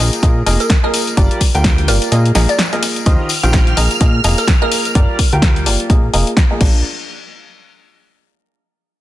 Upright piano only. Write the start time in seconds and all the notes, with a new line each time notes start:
0.00 A#3 F4 G#4 A#4 D#5
0.23 A#3 F4 G#4 A#4 D#5
0.46 A#3 F4 G#4 A#4 D#5
0.83 A#3 F4 G#4 A#4 D#5
1.17 G3 F4 G4 A#4 D5
1.55 G3 F4 G4 A#4 G5
1.88 A#3 F4 G4 A#4 D5
2.12 A#3 F4 G#4 A#4 D#5
2.35 A#3 F4 G#4 A#4 D#5
2.73 A#3 F4 G#4 A#4 D#5
3.06 D#3 F4 G4 C5 D#5
3.43 D#3 F4 G4 C5 G5
3.77 A#3 F4 G#4 A#4 D#5
4.01 A#3 F4 G#4 A#4 D#5
4.24 A#3 F4 G#4 A#4 D#5
4.62 A#3 F4 G#4 A#4 D#5
4.95 G3 F4 G4 A#4 D5
5.33 G3 F4 G4 A#4 G5
5.66 A#3 F4 G4 A#4 D5
5.90 A#3 F4 G#4 A#4 D#5
6.13 A#3 F4 G#4 A#4 D#5
6.51 A#3 F4 G#4 A#4 D#5
6.61 D4 F4 A#4 D5